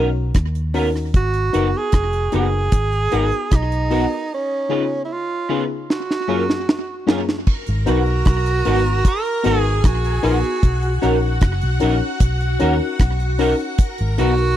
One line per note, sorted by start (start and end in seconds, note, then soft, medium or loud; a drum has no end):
0.00 0.31 B1 medium
0.34 1.16 D#2 medium
0.34 kick loud
0.34 cross-stick loud
0.34 closed hi-hat medium
0.55 closed hi-hat soft
0.74 0.87 B3 medium
0.74 0.87 C#4 medium
0.74 0.88 D#4 medium
0.74 0.87 D#4 medium
0.74 0.88 F#4 medium
0.74 0.88 A#4 loud
0.74 0.88 A#4 medium
0.74 open hi-hat medium
0.96 cross-stick medium
1.14 1.49 G#1 loud
1.14 1.79 F#4 loud
1.14 kick loud
1.14 closed hi-hat medium
1.34 closed hi-hat soft
1.53 1.72 F#1 medium
1.53 1.67 B3 medium
1.53 1.67 D#4 medium
1.53 1.66 D#4 medium
1.53 1.67 F#4 medium
1.53 1.67 A#4 medium
1.53 1.67 B4 loud
1.53 closed hi-hat medium
1.77 2.34 G#4 loud
1.92 2.28 F1 medium
1.92 kick loud
1.92 cross-stick loud
1.92 closed hi-hat medium
2.13 closed hi-hat soft
2.32 2.68 F#1 medium
2.32 2.46 B3 medium
2.32 2.46 D#4 medium
2.32 2.46 F#4 medium
2.32 3.57 G#4 loud
2.32 2.46 A#4 medium
2.32 2.46 B4 medium
2.32 closed hi-hat medium
2.72 3.08 G#1 loud
2.72 kick loud
2.72 closed hi-hat medium
2.92 closed hi-hat soft
3.12 3.30 G#1 medium
3.12 3.25 B3 medium
3.12 3.25 D#4 medium
3.12 3.25 F#4 medium
3.12 3.25 A#4 loud
3.12 3.25 B4 medium
3.12 closed hi-hat medium
3.32 closed hi-hat soft
3.51 4.05 B1 medium
3.51 4.32 D#4 medium
3.51 kick loud
3.51 cross-stick loud
3.51 closed hi-hat medium
3.72 closed hi-hat soft
3.90 4.04 B3 medium
3.90 4.04 D#4 medium
3.90 4.04 F#4 medium
3.90 4.04 A#4 medium
3.90 4.04 B4 medium
3.90 open hi-hat medium
4.34 5.01 C#4 medium
4.69 4.83 C#3 medium
4.69 4.83 B3 medium
4.69 4.83 C#4 medium
4.69 4.83 D#4 medium
4.69 4.83 F4 medium
4.69 4.83 G#4 medium
4.69 4.83 B4 medium
5.05 5.14 E4 medium
5.13 5.64 F4 medium
5.49 5.63 C#3 medium
5.49 5.63 B3 medium
5.49 5.62 C#4 medium
5.49 5.63 D#4 medium
5.49 5.62 F4 medium
5.49 5.63 F4 medium
5.49 5.63 G#4 medium
5.49 5.62 B4 medium
5.90 7.05 F#4 medium
5.90 snare medium
6.11 snare medium
6.28 6.41 F#2 medium
6.28 6.41 A#3 medium
6.28 6.41 C#4 medium
6.28 6.42 C#4 medium
6.28 6.42 F4 medium
6.28 6.41 F4 medium
6.28 6.42 G#4 loud
6.28 6.42 A#4 medium
6.50 snare medium
6.69 snare medium
7.06 7.20 F#2 medium
7.06 7.20 A#3 medium
7.06 7.20 C#4 medium
7.06 7.21 F4 medium
7.06 7.21 G#4 medium
7.06 7.21 A#4 medium
7.06 snare loud
7.29 snare medium
7.47 9.41 A#4 medium
7.47 9.41 A#5 medium
7.47 kick loud
7.47 crash medium
7.67 7.85 G#1 loud
7.67 closed hi-hat medium
7.86 8.22 B1 medium
7.86 8.00 B3 medium
7.86 8.00 D#4 medium
7.86 7.99 D#4 medium
7.86 8.00 F#4 medium
7.86 9.09 F#4 loud
7.86 8.00 A#4 medium
7.86 8.00 B4 loud
7.86 closed hi-hat medium
8.06 closed hi-hat soft
8.25 8.61 B1 loud
8.25 kick loud
8.25 cross-stick loud
8.25 closed hi-hat medium
8.46 closed hi-hat medium
8.65 9.01 G#1 medium
8.65 8.79 B3 medium
8.65 8.79 D#4 medium
8.65 8.78 D#4 medium
8.65 8.79 F#4 medium
8.65 8.79 A#4 loud
8.65 8.79 B4 medium
8.65 closed hi-hat medium
8.86 closed hi-hat soft
9.05 9.46 A#4 loud
9.05 kick loud
9.05 closed hi-hat loud
9.25 closed hi-hat soft
9.44 9.80 G#1 medium
9.44 9.57 B3 medium
9.44 9.57 D#4 medium
9.44 9.58 F#4 medium
9.44 10.61 G#4 medium
9.44 9.88 G#4 loud
9.44 9.58 A#4 loud
9.44 9.58 B4 medium
9.44 10.61 G#5 medium
9.44 closed hi-hat medium
9.84 10.19 A#1 medium
9.84 10.24 F#4 medium
9.84 kick loud
9.84 cross-stick loud
9.84 closed hi-hat loud
10.05 closed hi-hat soft
10.23 10.42 A#1 medium
10.23 10.36 B3 medium
10.23 10.37 D#4 medium
10.23 10.36 D#4 medium
10.23 10.37 F#4 medium
10.23 10.36 F#4 medium
10.23 10.99 F#4 medium
10.23 10.37 A#4 loud
10.23 10.37 B4 medium
10.23 cross-stick medium
10.23 open hi-hat medium
10.44 closed hi-hat soft
10.63 10.98 B1 loud
10.63 13.75 F#4 medium
10.63 13.75 F#5 medium
10.63 kick loud
10.63 closed hi-hat medium
10.82 closed hi-hat medium
11.02 11.38 A#1 medium
11.02 11.16 C#4 medium
11.02 11.15 D#4 medium
11.02 11.16 D#4 medium
11.02 11.16 F#4 medium
11.02 11.15 F#4 medium
11.02 11.16 A#4 loud
11.02 11.16 A#4 medium
11.02 closed hi-hat medium
11.41 11.60 F#1 medium
11.41 kick loud
11.41 cross-stick loud
11.41 closed hi-hat medium
11.61 11.80 B1 loud
11.61 closed hi-hat medium
11.80 12.00 A#1 medium
11.80 11.94 C#4 medium
11.80 11.94 D#4 medium
11.80 11.94 F#4 medium
11.80 11.95 F#4 medium
11.80 11.94 A#4 loud
11.80 11.95 A#4 loud
11.80 closed hi-hat medium
12.20 12.56 B1 loud
12.20 kick loud
12.20 closed hi-hat medium
12.41 closed hi-hat soft
12.59 12.79 D#2 loud
12.59 12.73 C#4 loud
12.59 12.74 D#4 medium
12.59 12.73 D#4 medium
12.59 12.74 F#4 medium
12.59 12.74 A#4 loud
12.59 12.74 A#4 medium
12.59 closed hi-hat medium
12.99 13.53 B1 loud
12.99 kick loud
12.99 cross-stick loud
12.99 closed hi-hat medium
13.20 closed hi-hat soft
13.39 13.52 C#4 medium
13.39 13.53 D#4 medium
13.39 13.52 D#4 medium
13.39 13.53 F#4 medium
13.39 13.53 A#4 loud
13.39 13.53 A#4 medium
13.39 cross-stick medium
13.39 open hi-hat medium
13.60 closed hi-hat soft
13.78 14.57 A#4 medium
13.78 14.57 A#5 medium
13.78 kick loud
13.78 closed hi-hat loud
13.98 14.17 G#1 loud
13.98 closed hi-hat medium
14.18 14.54 B1 loud
14.18 14.32 B3 medium
14.18 14.31 D#4 medium
14.18 14.32 D#4 medium
14.18 14.32 F#4 medium
14.18 14.31 F#4 medium
14.18 14.57 F#4 loud
14.18 14.32 A#4 medium
14.18 14.32 B4 loud
14.18 closed hi-hat medium
14.38 closed hi-hat soft